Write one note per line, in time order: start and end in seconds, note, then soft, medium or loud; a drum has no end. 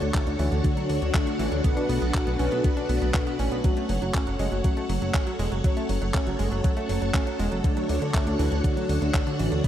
0.00 0.12 D2 medium
0.00 0.36 D3 medium
0.00 0.09 D3 medium
0.00 0.36 A3 medium
0.00 0.36 D4 medium
0.00 3.60 D4 medium
0.00 0.36 F#4 medium
0.00 3.60 F#4 medium
0.00 3.60 A4 medium
0.00 0.36 C#5 medium
0.00 1.60 C#5 medium
0.00 7.60 F#5 medium
0.00 closed hi-hat soft
0.14 0.21 A3 medium
0.14 kick loud
0.14 clap loud
0.14 closed hi-hat medium
0.27 0.37 D2 medium
0.27 0.34 D3 medium
0.27 closed hi-hat soft
0.39 0.49 D2 medium
0.39 1.61 D3 medium
0.39 0.46 E3 loud
0.39 1.61 A3 medium
0.39 1.61 D4 medium
0.39 1.61 F#4 medium
0.39 1.61 C#5 medium
0.39 open hi-hat medium
0.52 0.62 D2 medium
0.52 0.59 D3 medium
0.52 closed hi-hat soft
0.64 0.69 D3 medium
0.64 kick loud
0.64 closed hi-hat medium
0.77 0.84 F#3 medium
0.77 closed hi-hat soft
0.89 0.99 D2 medium
0.89 0.96 D3 medium
0.89 open hi-hat loud
1.02 1.12 D2 medium
1.02 1.09 D3 medium
1.02 closed hi-hat soft
1.14 1.21 A3 medium
1.14 kick loud
1.14 clap loud
1.14 closed hi-hat medium
1.27 1.34 D3 medium
1.27 closed hi-hat soft
1.39 1.49 A1 medium
1.39 1.46 E3 loud
1.39 open hi-hat medium
1.52 1.62 D2 medium
1.52 1.59 D3 medium
1.52 closed hi-hat soft
1.64 2.36 B2 medium
1.64 2.36 A3 medium
1.64 1.68 B3 medium
1.64 2.36 D4 medium
1.64 2.36 F#4 medium
1.64 2.36 B4 loud
1.64 3.62 B4 medium
1.64 kick loud
1.64 closed hi-hat medium
1.77 1.84 D4 medium
1.77 closed hi-hat soft
1.89 1.99 B1 medium
1.89 1.96 B3 medium
1.89 open hi-hat loud
2.02 2.12 B1 medium
2.02 2.09 B3 medium
2.02 closed hi-hat soft
2.14 2.21 F#4 medium
2.14 kick loud
2.14 clap loud
2.14 closed hi-hat medium
2.27 2.37 B1 medium
2.27 2.34 B3 medium
2.27 closed hi-hat soft
2.39 2.49 B1 loud
2.39 3.61 B2 medium
2.39 3.61 A3 medium
2.39 2.46 C#4 loud
2.39 3.61 D4 medium
2.39 3.61 F#4 medium
2.39 3.61 B4 medium
2.39 open hi-hat medium
2.52 2.62 B1 medium
2.52 2.59 B3 medium
2.52 closed hi-hat soft
2.64 2.69 B3 medium
2.64 kick loud
2.64 closed hi-hat medium
2.77 2.84 D4 medium
2.77 closed hi-hat soft
2.89 2.99 B1 medium
2.89 2.96 B3 medium
2.89 open hi-hat loud
3.02 3.12 B1 medium
3.02 3.09 B3 medium
3.02 closed hi-hat soft
3.14 3.21 F#4 medium
3.14 kick loud
3.14 clap loud
3.14 closed hi-hat medium
3.27 3.34 B3 medium
3.27 closed hi-hat soft
3.39 3.49 A1 loud
3.39 3.46 C#4 loud
3.39 open hi-hat medium
3.52 3.62 B1 medium
3.52 3.59 B3 medium
3.52 closed hi-hat soft
3.64 3.69 F#3 medium
3.64 4.36 A3 medium
3.64 4.36 C#4 medium
3.64 4.36 F#4 medium
3.64 9.68 A4 medium
3.64 4.36 C#5 loud
3.64 7.61 C#5 medium
3.64 kick loud
3.64 closed hi-hat medium
3.77 3.84 A3 medium
3.77 closed hi-hat soft
3.89 3.99 F#1 medium
3.89 3.96 F#3 medium
3.89 open hi-hat loud
4.02 4.12 F#1 medium
4.02 4.09 F#3 medium
4.02 closed hi-hat soft
4.14 4.21 C#4 medium
4.14 kick loud
4.14 clap loud
4.14 closed hi-hat medium
4.27 4.37 F#1 medium
4.27 4.34 F#3 medium
4.27 closed hi-hat soft
4.39 4.49 F#1 loud
4.39 4.46 G#3 loud
4.39 5.61 A3 medium
4.39 5.61 C#4 medium
4.39 5.61 F#4 medium
4.39 5.61 C#5 medium
4.39 open hi-hat medium
4.52 4.62 F#1 medium
4.52 4.59 F#3 medium
4.52 closed hi-hat soft
4.64 4.69 F#3 medium
4.64 kick loud
4.64 closed hi-hat medium
4.77 4.84 A3 medium
4.77 closed hi-hat soft
4.89 4.99 F#1 medium
4.89 4.96 F#3 medium
4.89 open hi-hat loud
5.02 5.12 F#1 medium
5.02 5.09 F#3 medium
5.02 closed hi-hat soft
5.14 5.21 C#4 medium
5.14 kick loud
5.14 clap loud
5.14 closed hi-hat medium
5.27 5.34 F#3 medium
5.27 closed hi-hat soft
5.39 5.49 E1 medium
5.39 5.46 G#3 loud
5.39 open hi-hat medium
5.52 5.62 F#1 medium
5.52 5.59 F#3 medium
5.52 closed hi-hat soft
5.64 5.68 F#3 medium
5.64 6.36 A3 medium
5.64 6.36 C#4 medium
5.64 6.36 F#4 medium
5.64 6.36 C#5 medium
5.64 kick loud
5.64 closed hi-hat medium
5.77 5.84 A3 medium
5.77 closed hi-hat soft
5.89 5.99 F#1 medium
5.89 5.96 F#3 medium
5.89 open hi-hat loud
6.02 6.12 F#1 medium
6.02 6.09 F#3 medium
6.02 closed hi-hat soft
6.14 6.21 C#4 medium
6.14 kick loud
6.14 clap loud
6.14 closed hi-hat medium
6.27 6.37 F#1 medium
6.27 6.34 F#3 medium
6.27 closed hi-hat soft
6.39 6.49 F#1 loud
6.39 6.46 G#3 loud
6.39 7.61 A3 medium
6.39 7.61 C#4 medium
6.39 7.61 F#4 medium
6.39 7.61 C#5 medium
6.39 open hi-hat loud
6.52 6.62 F#1 medium
6.52 6.59 F#3 medium
6.52 closed hi-hat soft
6.64 6.68 F#3 medium
6.64 kick loud
6.64 closed hi-hat medium
6.77 6.84 A3 medium
6.77 closed hi-hat soft
6.89 6.99 F#1 loud
6.89 6.96 F#3 medium
6.89 open hi-hat loud
7.02 7.12 F#1 medium
7.02 7.09 F#3 medium
7.02 closed hi-hat soft
7.14 7.21 C#4 medium
7.14 kick loud
7.14 clap loud
7.14 closed hi-hat medium
7.27 7.34 F#3 medium
7.27 closed hi-hat soft
7.39 7.49 E1 loud
7.39 7.46 G#3 loud
7.39 open hi-hat medium
7.52 7.62 F#1 medium
7.52 7.59 F#3 medium
7.52 closed hi-hat soft
7.64 7.68 D3 medium
7.64 8.36 D3 medium
7.64 8.36 A3 medium
7.64 9.68 D4 medium
7.64 8.36 D4 medium
7.64 9.68 F#4 medium
7.64 8.36 F#4 medium
7.64 9.62 C#5 medium
7.64 8.36 C#5 loud
7.64 9.68 F#5 loud
7.64 kick loud
7.64 closed hi-hat loud
7.77 7.84 F#3 medium
7.77 closed hi-hat soft
7.89 7.99 D2 loud
7.89 7.96 D3 medium
7.89 open hi-hat loud
8.02 8.12 D2 medium
8.02 8.09 D3 medium
8.02 closed hi-hat soft
8.14 8.21 A3 medium
8.14 kick loud
8.14 clap loud
8.14 closed hi-hat medium
8.27 8.37 D2 medium
8.27 8.34 D3 medium
8.27 closed hi-hat soft
8.39 8.49 D2 medium
8.39 9.61 D3 medium
8.39 8.46 E3 loud
8.39 9.61 A3 medium
8.39 9.61 D4 medium
8.39 9.61 F#4 medium
8.39 9.61 C#5 medium
8.39 open hi-hat medium
8.52 8.62 D2 medium
8.52 8.59 D3 medium
8.52 closed hi-hat soft
8.64 8.69 D3 medium
8.64 kick loud
8.64 closed hi-hat loud
8.77 8.84 F#3 medium
8.77 closed hi-hat soft
8.89 8.99 D2 medium
8.89 8.96 D3 medium
8.89 open hi-hat loud
9.02 9.12 D2 medium
9.02 9.09 D3 medium
9.02 closed hi-hat soft
9.14 9.21 A3 medium
9.14 kick loud
9.14 clap loud
9.14 closed hi-hat loud
9.27 9.34 D3 medium
9.27 closed hi-hat soft
9.39 9.49 A1 loud
9.39 9.46 E3 loud
9.39 open hi-hat loud
9.52 9.62 D2 medium
9.52 9.59 D3 medium
9.52 closed hi-hat soft
9.64 9.68 B2 medium
9.64 9.68 A3 medium
9.64 9.68 B3 medium
9.64 9.68 D4 medium
9.64 9.68 F#4 medium
9.64 9.68 B4 loud
9.64 9.68 B4 medium
9.64 kick loud
9.64 closed hi-hat loud